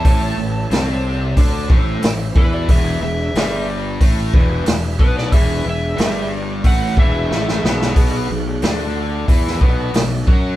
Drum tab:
HH |o---o---o---o---|o---o---o---o---|o---o---o-------|o---o---o---o---|
SD |----o-------o---|----o-------o--o|----o-------oooo|----o----o--o---|
BD |o-------o-o---o-|o-------o-o---o-|o-------o-o-----|o-------o-o---o-|